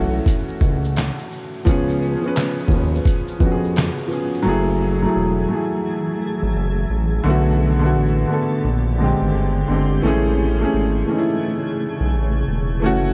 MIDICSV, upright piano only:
0, 0, Header, 1, 2, 480
1, 0, Start_track
1, 0, Tempo, 697674
1, 1144, Time_signature, 4, 2, 24, 8
1, 9036, End_track
2, 0, Start_track
2, 0, Title_t, "Upright piano"
2, 0, Program_c, 0, 0
2, 0, Control_c, 0, 64, 127
2, 0, Note_on_c, 0, 52, 69
2, 0, Note_on_c, 0, 57, 75
2, 0, Note_on_c, 0, 61, 67
2, 0, Note_on_c, 0, 66, 78
2, 655, Note_off_c, 0, 52, 0
2, 663, Note_off_c, 0, 57, 0
2, 670, Note_off_c, 0, 61, 0
2, 678, Note_off_c, 0, 66, 0
2, 1134, Note_on_c, 0, 53, 111
2, 1147, Note_on_c, 0, 59, 99
2, 1154, Control_c, 0, 64, 0
2, 1161, Note_on_c, 0, 61, 97
2, 1177, Note_on_c, 0, 68, 110
2, 1292, Control_c, 0, 64, 127
2, 1417, Note_off_c, 0, 53, 0
2, 1423, Note_off_c, 0, 59, 0
2, 1430, Note_off_c, 0, 61, 0
2, 1439, Note_off_c, 0, 68, 0
2, 1524, Note_on_c, 0, 53, 83
2, 1539, Note_on_c, 0, 59, 66
2, 1554, Note_on_c, 0, 61, 78
2, 1565, Note_on_c, 0, 71, 93
2, 1792, Note_off_c, 0, 53, 0
2, 1800, Note_off_c, 0, 59, 0
2, 1807, Note_off_c, 0, 61, 0
2, 1813, Note_off_c, 0, 71, 0
2, 1853, Note_on_c, 0, 53, 78
2, 1866, Note_on_c, 0, 59, 65
2, 1880, Note_on_c, 0, 61, 74
2, 1895, Note_on_c, 0, 71, 81
2, 2251, Note_off_c, 0, 53, 0
2, 2258, Note_off_c, 0, 59, 0
2, 2265, Note_off_c, 0, 61, 0
2, 2273, Note_off_c, 0, 71, 0
2, 2331, Note_on_c, 0, 53, 66
2, 2346, Note_on_c, 0, 59, 61
2, 2360, Note_on_c, 0, 61, 61
2, 2376, Note_on_c, 0, 66, 66
2, 2417, Note_off_c, 0, 66, 0
2, 2420, Note_on_c, 0, 68, 86
2, 2730, Note_off_c, 0, 53, 0
2, 2738, Note_off_c, 0, 59, 0
2, 2745, Note_off_c, 0, 61, 0
2, 2775, Note_off_c, 0, 68, 0
2, 2798, Note_on_c, 0, 53, 76
2, 2812, Note_on_c, 0, 59, 68
2, 2827, Note_on_c, 0, 61, 62
2, 2844, Note_on_c, 0, 68, 84
2, 3008, Note_off_c, 0, 53, 0
2, 3015, Note_off_c, 0, 59, 0
2, 3022, Note_off_c, 0, 61, 0
2, 3030, Note_off_c, 0, 68, 0
2, 3045, Note_on_c, 0, 54, 109
2, 3060, Note_on_c, 0, 57, 90
2, 3073, Control_c, 0, 64, 0
2, 3074, Note_on_c, 0, 64, 87
2, 3088, Note_on_c, 0, 68, 114
2, 3201, Control_c, 0, 64, 127
2, 3333, Note_off_c, 0, 54, 0
2, 3340, Note_off_c, 0, 57, 0
2, 3347, Note_off_c, 0, 64, 0
2, 3354, Note_off_c, 0, 68, 0
2, 3457, Note_on_c, 0, 54, 86
2, 3471, Note_on_c, 0, 57, 81
2, 3485, Note_on_c, 0, 64, 76
2, 3500, Note_on_c, 0, 68, 88
2, 3719, Note_off_c, 0, 54, 0
2, 3726, Note_off_c, 0, 57, 0
2, 3733, Note_off_c, 0, 64, 0
2, 3740, Note_off_c, 0, 68, 0
2, 3775, Note_on_c, 0, 54, 75
2, 3788, Note_on_c, 0, 57, 71
2, 3804, Note_on_c, 0, 64, 65
2, 3817, Note_on_c, 0, 68, 79
2, 4499, Note_off_c, 0, 54, 0
2, 4505, Note_off_c, 0, 57, 0
2, 4514, Note_off_c, 0, 64, 0
2, 4520, Note_off_c, 0, 68, 0
2, 4978, Note_on_c, 0, 50, 102
2, 4992, Control_c, 0, 64, 0
2, 4992, Note_on_c, 0, 57, 103
2, 5007, Note_on_c, 0, 59, 90
2, 5021, Note_on_c, 0, 66, 103
2, 5124, Control_c, 0, 64, 127
2, 5259, Note_off_c, 0, 50, 0
2, 5266, Note_off_c, 0, 57, 0
2, 5274, Note_off_c, 0, 59, 0
2, 5280, Note_off_c, 0, 66, 0
2, 5362, Note_on_c, 0, 50, 86
2, 5377, Note_on_c, 0, 57, 83
2, 5392, Note_on_c, 0, 59, 76
2, 5406, Note_on_c, 0, 66, 90
2, 5631, Note_off_c, 0, 50, 0
2, 5639, Note_off_c, 0, 57, 0
2, 5646, Note_off_c, 0, 59, 0
2, 5653, Note_off_c, 0, 66, 0
2, 5693, Note_on_c, 0, 50, 77
2, 5705, Note_on_c, 0, 57, 69
2, 5719, Note_on_c, 0, 59, 69
2, 5735, Note_on_c, 0, 69, 82
2, 5938, Note_off_c, 0, 50, 0
2, 5944, Note_off_c, 0, 57, 0
2, 5952, Note_off_c, 0, 59, 0
2, 5954, Control_c, 0, 64, 0
2, 5960, Note_off_c, 0, 69, 0
2, 6093, Control_c, 0, 64, 127
2, 6179, Note_on_c, 0, 50, 72
2, 6193, Note_on_c, 0, 56, 78
2, 6207, Note_on_c, 0, 60, 70
2, 6220, Note_on_c, 0, 67, 83
2, 6574, Note_off_c, 0, 50, 0
2, 6581, Note_off_c, 0, 56, 0
2, 6588, Note_off_c, 0, 60, 0
2, 6595, Note_off_c, 0, 67, 0
2, 6658, Note_on_c, 0, 50, 75
2, 6673, Note_on_c, 0, 56, 61
2, 6686, Note_on_c, 0, 60, 71
2, 6701, Note_on_c, 0, 67, 82
2, 6857, Note_off_c, 0, 50, 0
2, 6865, Note_off_c, 0, 56, 0
2, 6871, Note_off_c, 0, 60, 0
2, 6879, Note_off_c, 0, 67, 0
2, 6890, Note_on_c, 0, 52, 114
2, 6902, Note_on_c, 0, 57, 96
2, 6912, Control_c, 0, 64, 0
2, 6918, Note_on_c, 0, 61, 94
2, 6933, Note_on_c, 0, 68, 126
2, 7022, Control_c, 0, 64, 127
2, 7175, Note_off_c, 0, 52, 0
2, 7181, Note_off_c, 0, 57, 0
2, 7189, Note_off_c, 0, 61, 0
2, 7196, Note_off_c, 0, 68, 0
2, 7284, Note_on_c, 0, 52, 81
2, 7299, Note_on_c, 0, 57, 83
2, 7312, Note_on_c, 0, 61, 79
2, 7325, Note_on_c, 0, 68, 99
2, 7552, Note_off_c, 0, 52, 0
2, 7560, Note_off_c, 0, 57, 0
2, 7566, Note_off_c, 0, 61, 0
2, 7573, Note_off_c, 0, 68, 0
2, 7604, Note_on_c, 0, 52, 82
2, 7619, Note_on_c, 0, 57, 67
2, 7634, Note_on_c, 0, 61, 67
2, 7647, Note_on_c, 0, 63, 60
2, 7693, Note_off_c, 0, 63, 0
2, 7693, Note_on_c, 0, 64, 90
2, 8334, Note_off_c, 0, 52, 0
2, 8341, Note_off_c, 0, 57, 0
2, 8348, Note_off_c, 0, 61, 0
2, 8378, Note_off_c, 0, 64, 0
2, 8804, Note_on_c, 0, 52, 90
2, 8820, Note_on_c, 0, 57, 94
2, 8832, Note_on_c, 0, 61, 93
2, 8833, Control_c, 0, 64, 0
2, 8846, Note_on_c, 0, 66, 122
2, 8970, Control_c, 0, 64, 127
2, 9036, Note_off_c, 0, 52, 0
2, 9036, Note_off_c, 0, 57, 0
2, 9036, Note_off_c, 0, 61, 0
2, 9036, Note_off_c, 0, 66, 0
2, 9036, End_track
0, 0, End_of_file